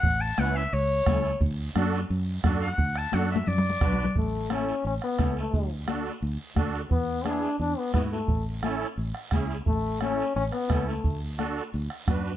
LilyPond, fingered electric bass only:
\new Staff \with { instrumentName = "Fingered electric bass" } { \clef bass \time 4/4 \key a \major \tempo 4 = 174 a,,4 cis,4 cis,4 cis,4 | d,4 fis,4 fis,4 fis,4 | d,4 fis,4 fis,4 b,,4 | a,,2 a,,8 r8 cis,4 |
d,2 d,8 r8 d,4 | e,2 e,8 r8 gis,4 | a,,2 a,,8 r8 cis,4 | a,,2 a,,8 r8 cis,4 |
d,2 d,8 r8 fis,4 | }